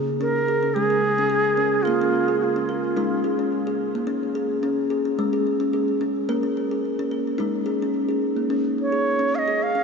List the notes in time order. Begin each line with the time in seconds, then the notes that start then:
Already playing: C#3 G#4
0.21 C#4 A#4
0.48 G#4
0.63 C#4
0.74 G#3 G#4
0.90 G#4
1.18 C#4
1.30 G#4
1.57 C#4
1.83 F4 A#4
1.87 A#3
2.02 C#4
2.28 G#4
2.40 F#4
2.44 F4
2.56 C#4
2.69 A#4
2.96 G#3 D#4
3.24 G#4
3.39 C#4
3.67 G#4
3.95 A#3
4.07 C#4
4.35 G#4
4.63 C#4
4.90 G#4
5.05 C#4
5.19 G#3
5.33 G#4
5.60 C#4
5.73 G#4
6.01 C#4
6.29 A#3 A#4
6.43 C#4
6.71 G#4
6.99 C#4
7.11 A#4
7.38 G#3 D#4
7.66 G#4
7.82 C#4
8.09 G#4
8.37 A#3
8.50 C#4
8.82 C#5
8.92 G#4
9.19 C#4
9.35 D#5 F5
9.48 G#4
9.63 F5
9.75 C#4